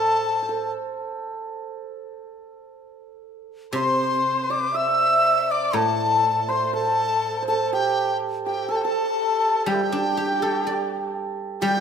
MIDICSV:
0, 0, Header, 1, 5, 480
1, 0, Start_track
1, 0, Tempo, 1000000
1, 1796, Time_signature, 4, 2, 24, 8
1, 3235, Tempo, 977199
1, 5722, End_track
2, 0, Start_track
2, 0, Title_t, "Dizi"
2, 0, Program_c, 0, 73
2, 0, Note_on_c, 0, 81, 84
2, 348, Note_off_c, 0, 81, 0
2, 1797, Note_on_c, 0, 84, 85
2, 2164, Note_on_c, 0, 86, 83
2, 2171, Note_off_c, 0, 84, 0
2, 2286, Note_on_c, 0, 88, 89
2, 2293, Note_off_c, 0, 86, 0
2, 2647, Note_on_c, 0, 86, 76
2, 2654, Note_off_c, 0, 88, 0
2, 2765, Note_on_c, 0, 81, 87
2, 2772, Note_off_c, 0, 86, 0
2, 3118, Note_on_c, 0, 84, 77
2, 3125, Note_off_c, 0, 81, 0
2, 3235, Note_off_c, 0, 84, 0
2, 3238, Note_on_c, 0, 81, 84
2, 3579, Note_off_c, 0, 81, 0
2, 3601, Note_on_c, 0, 81, 80
2, 3712, Note_off_c, 0, 81, 0
2, 3723, Note_on_c, 0, 79, 81
2, 3936, Note_off_c, 0, 79, 0
2, 4084, Note_on_c, 0, 79, 71
2, 4205, Note_on_c, 0, 81, 80
2, 4212, Note_off_c, 0, 79, 0
2, 4229, Note_on_c, 0, 79, 59
2, 4236, Note_off_c, 0, 81, 0
2, 4266, Note_on_c, 0, 81, 81
2, 4273, Note_off_c, 0, 79, 0
2, 4678, Note_on_c, 0, 79, 75
2, 4686, Note_off_c, 0, 81, 0
2, 5394, Note_off_c, 0, 79, 0
2, 5630, Note_on_c, 0, 79, 95
2, 5722, Note_off_c, 0, 79, 0
2, 5722, End_track
3, 0, Start_track
3, 0, Title_t, "Erhu"
3, 0, Program_c, 1, 110
3, 0, Note_on_c, 1, 69, 75
3, 329, Note_off_c, 1, 69, 0
3, 1796, Note_on_c, 1, 72, 71
3, 2260, Note_off_c, 1, 72, 0
3, 2276, Note_on_c, 1, 76, 82
3, 2645, Note_on_c, 1, 74, 79
3, 2652, Note_off_c, 1, 76, 0
3, 2758, Note_on_c, 1, 69, 68
3, 2765, Note_off_c, 1, 74, 0
3, 3113, Note_on_c, 1, 72, 66
3, 3120, Note_off_c, 1, 69, 0
3, 3197, Note_off_c, 1, 72, 0
3, 3200, Note_on_c, 1, 72, 49
3, 3235, Note_on_c, 1, 69, 76
3, 3242, Note_off_c, 1, 72, 0
3, 3594, Note_off_c, 1, 69, 0
3, 3597, Note_on_c, 1, 69, 63
3, 3725, Note_on_c, 1, 67, 70
3, 3733, Note_off_c, 1, 69, 0
3, 3953, Note_off_c, 1, 67, 0
3, 4081, Note_on_c, 1, 67, 60
3, 4191, Note_off_c, 1, 67, 0
3, 4203, Note_on_c, 1, 69, 67
3, 4263, Note_off_c, 1, 69, 0
3, 4266, Note_on_c, 1, 69, 79
3, 4684, Note_on_c, 1, 67, 57
3, 4691, Note_off_c, 1, 69, 0
3, 4711, Note_on_c, 1, 64, 45
3, 4718, Note_off_c, 1, 67, 0
3, 4744, Note_on_c, 1, 67, 65
3, 4751, Note_off_c, 1, 64, 0
3, 5394, Note_off_c, 1, 67, 0
3, 5635, Note_on_c, 1, 67, 72
3, 5722, Note_off_c, 1, 67, 0
3, 5722, End_track
4, 0, Start_track
4, 0, Title_t, "Hammered dulcimer"
4, 0, Program_c, 2, 15
4, 0, Note_on_c, 2, 69, 83
4, 0, Note_on_c, 2, 72, 60
4, 202, Note_off_c, 2, 72, 0
4, 203, Note_on_c, 2, 72, 46
4, 233, Note_off_c, 2, 69, 0
4, 235, Note_on_c, 2, 69, 64
4, 1472, Note_off_c, 2, 72, 0
4, 1639, Note_off_c, 2, 69, 0
4, 1802, Note_on_c, 2, 72, 75
4, 2159, Note_on_c, 2, 74, 75
4, 2277, Note_on_c, 2, 76, 81
4, 2753, Note_on_c, 2, 69, 71
4, 3070, Note_off_c, 2, 72, 0
4, 3113, Note_on_c, 2, 72, 72
4, 3229, Note_off_c, 2, 69, 0
4, 3231, Note_on_c, 2, 69, 67
4, 3344, Note_off_c, 2, 74, 0
4, 3381, Note_off_c, 2, 76, 0
4, 3569, Note_off_c, 2, 72, 0
4, 3571, Note_on_c, 2, 72, 52
4, 3597, Note_off_c, 2, 69, 0
4, 3599, Note_on_c, 2, 69, 71
4, 3720, Note_on_c, 2, 67, 71
4, 4080, Note_off_c, 2, 67, 0
4, 4082, Note_on_c, 2, 67, 59
4, 4188, Note_off_c, 2, 69, 0
4, 4190, Note_on_c, 2, 69, 72
4, 4268, Note_off_c, 2, 69, 0
4, 4270, Note_on_c, 2, 69, 71
4, 4674, Note_off_c, 2, 67, 0
4, 4676, Note_on_c, 2, 67, 62
4, 4714, Note_off_c, 2, 67, 0
4, 4716, Note_on_c, 2, 67, 43
4, 4753, Note_off_c, 2, 67, 0
4, 4754, Note_on_c, 2, 67, 51
4, 4783, Note_off_c, 2, 67, 0
4, 4785, Note_on_c, 2, 67, 39
4, 4824, Note_off_c, 2, 67, 0
4, 4826, Note_on_c, 2, 67, 47
4, 4851, Note_off_c, 2, 67, 0
4, 4853, Note_on_c, 2, 67, 42
4, 4869, Note_off_c, 2, 72, 0
4, 4898, Note_off_c, 2, 67, 0
4, 4900, Note_on_c, 2, 67, 47
4, 4932, Note_off_c, 2, 67, 0
4, 4934, Note_on_c, 2, 67, 43
4, 4965, Note_off_c, 2, 67, 0
4, 4967, Note_on_c, 2, 67, 49
4, 4994, Note_off_c, 2, 67, 0
4, 4996, Note_on_c, 2, 67, 44
4, 5029, Note_off_c, 2, 67, 0
4, 5031, Note_on_c, 2, 67, 52
4, 5063, Note_off_c, 2, 67, 0
4, 5065, Note_on_c, 2, 67, 46
4, 5149, Note_off_c, 2, 69, 0
4, 5151, Note_on_c, 2, 69, 54
4, 5628, Note_off_c, 2, 67, 0
4, 5630, Note_on_c, 2, 67, 86
4, 5671, Note_off_c, 2, 67, 0
4, 5673, Note_on_c, 2, 67, 61
4, 5704, Note_off_c, 2, 67, 0
4, 5706, Note_on_c, 2, 67, 66
4, 5722, Note_off_c, 2, 67, 0
4, 5722, Note_off_c, 2, 69, 0
4, 5722, End_track
5, 0, Start_track
5, 0, Title_t, "Guzheng"
5, 0, Program_c, 3, 107
5, 0, Note_on_c, 3, 45, 60
5, 347, Note_off_c, 3, 45, 0
5, 1788, Note_on_c, 3, 48, 54
5, 2752, Note_on_c, 3, 45, 57
5, 2756, Note_off_c, 3, 48, 0
5, 4195, Note_off_c, 3, 45, 0
5, 4671, Note_on_c, 3, 55, 61
5, 4799, Note_on_c, 3, 62, 48
5, 4921, Note_on_c, 3, 67, 43
5, 5044, Note_on_c, 3, 69, 47
5, 5164, Note_on_c, 3, 74, 44
5, 5626, Note_off_c, 3, 55, 0
5, 5632, Note_on_c, 3, 55, 64
5, 5722, Note_off_c, 3, 55, 0
5, 5722, Note_off_c, 3, 62, 0
5, 5722, Note_off_c, 3, 67, 0
5, 5722, Note_off_c, 3, 69, 0
5, 5722, Note_off_c, 3, 74, 0
5, 5722, End_track
0, 0, End_of_file